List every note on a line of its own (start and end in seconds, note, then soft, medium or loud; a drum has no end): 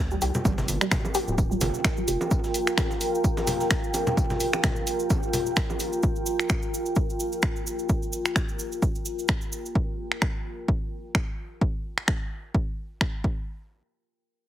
0.00 0.17 D2 loud
0.00 9.75 F4 medium
0.00 9.75 A#4 medium
0.00 9.75 G5 medium
0.11 0.17 G3 medium
0.11 cabasa soft
0.21 0.31 C2 medium
0.21 0.26 G4 medium
0.21 open hi-hat medium
0.21 tambourine medium
0.21 cabasa medium
0.34 low conga medium
0.34 cabasa soft
0.45 0.63 G1 loud
0.45 0.50 G3 medium
0.45 kick loud
0.45 tambourine medium
0.45 low bongo soft
0.45 cabasa soft
0.58 snare soft
0.58 low conga medium
0.58 cabasa soft
0.68 0.78 G1 medium
0.68 open hi-hat medium
0.68 tambourine medium
0.68 cabasa medium
0.81 0.87 G3 medium
0.81 finger snap medium
0.81 cabasa soft
0.91 finger snap medium
0.91 kick loud
0.91 snare loud
0.91 tambourine medium
0.91 low conga medium
0.91 cabasa medium
1.05 low bongo soft
1.05 cabasa soft
1.14 1.19 G4 loud
1.14 open hi-hat medium
1.14 tambourine medium
1.14 cabasa medium
1.28 1.57 D1 medium
1.28 cabasa soft
1.38 kick loud
1.38 tambourine medium
1.38 cabasa medium
1.51 1.55 G3 medium
1.51 cabasa soft
1.61 1.71 G1 medium
1.61 open hi-hat medium
1.61 tambourine medium
1.61 low bongo soft
1.61 low conga medium
1.61 cabasa medium
1.74 cabasa soft
1.84 finger snap loud
1.84 kick loud
1.84 snare loud
1.84 tambourine medium
1.84 cabasa medium
1.97 2.03 G3 medium
1.97 cabasa soft
2.08 2.17 F1 medium
2.08 2.12 G4 medium
2.08 open hi-hat medium
2.08 tambourine medium
2.08 cabasa loud
2.21 low bongo soft
2.21 cabasa soft
2.31 kick loud
2.31 tambourine medium
2.31 cabasa medium
2.44 snare soft
2.44 cabasa soft
2.54 open hi-hat medium
2.54 tambourine medium
2.54 cabasa loud
2.67 finger snap medium
2.67 snare soft
2.67 cabasa soft
2.78 finger snap medium
2.78 kick loud
2.78 snare loud
2.78 tambourine medium
2.78 low bongo soft
2.78 cabasa medium
2.91 snare soft
2.91 cabasa soft
3.01 open hi-hat medium
3.01 tambourine medium
3.01 cabasa medium
3.15 cabasa soft
3.24 kick loud
3.24 tambourine medium
3.24 cabasa medium
3.37 snare medium
3.37 low bongo soft
3.37 cabasa soft
3.47 snare soft
3.47 open hi-hat loud
3.47 tambourine medium
3.47 low conga medium
3.47 cabasa loud
3.60 snare soft
3.60 cabasa soft
3.71 finger snap medium
3.71 kick loud
3.71 snare loud
3.71 tambourine medium
3.71 cabasa medium
3.84 cabasa soft
3.94 open hi-hat medium
3.94 tambourine medium
3.94 low bongo soft
3.94 cabasa medium
4.07 low conga medium
4.07 cabasa soft
4.17 kick loud
4.17 tambourine medium
4.17 cabasa medium
4.30 snare soft
4.30 low conga medium
4.30 cabasa soft
4.40 open hi-hat medium
4.40 tambourine medium
4.40 cabasa loud
4.53 finger snap medium
4.53 low bongo soft
4.53 cabasa soft
4.64 finger snap medium
4.64 kick loud
4.64 snare loud
4.64 tambourine medium
4.64 low conga medium
4.64 cabasa medium
4.76 cabasa soft
4.87 open hi-hat loud
4.87 tambourine medium
4.87 cabasa medium
4.99 cabasa soft
5.10 kick loud
5.10 tambourine medium
5.10 low bongo soft
5.10 cabasa medium
5.23 cabasa soft
5.33 open hi-hat medium
5.33 tambourine medium
5.33 low conga medium
5.33 cabasa loud
5.46 cabasa soft
5.56 finger snap medium
5.56 kick loud
5.56 snare loud
5.56 tambourine medium
5.56 cabasa medium
5.70 low bongo soft
5.70 cabasa soft
5.79 open hi-hat medium
5.79 tambourine medium
5.79 cabasa medium
5.92 cabasa soft
6.03 kick loud
6.03 cabasa soft
6.16 cabasa soft
6.26 cabasa medium
6.39 finger snap medium
6.39 cabasa soft
6.49 finger snap medium
6.49 kick loud
6.49 cabasa medium
6.62 cabasa soft
6.74 cabasa medium
6.86 cabasa soft
6.96 kick loud
6.96 cabasa medium
7.10 cabasa soft
7.20 cabasa medium
7.32 cabasa soft
7.42 finger snap medium
7.42 kick loud
7.42 cabasa soft
7.56 cabasa soft
7.67 cabasa medium
7.79 cabasa soft
7.89 kick loud
7.89 cabasa medium
8.03 cabasa soft
8.13 cabasa loud
8.25 finger snap medium
8.25 cabasa soft
8.36 finger snap medium
8.36 kick loud
8.36 cabasa soft
8.48 cabasa soft
8.59 cabasa medium
8.72 cabasa soft
8.82 kick loud
8.82 cabasa soft
8.95 cabasa soft
9.05 cabasa medium
9.19 cabasa soft
9.28 finger snap medium
9.28 kick loud
9.28 cabasa soft
9.41 cabasa soft
9.52 cabasa medium
9.66 cabasa soft
9.75 kick loud
10.12 finger snap medium
10.22 finger snap medium
10.22 kick loud
10.68 kick loud
11.15 finger snap medium
11.15 kick loud
11.61 kick loud
11.98 finger snap medium
12.08 finger snap medium
12.08 kick loud
12.54 kick loud
13.01 finger snap medium
13.01 kick loud
13.24 kick loud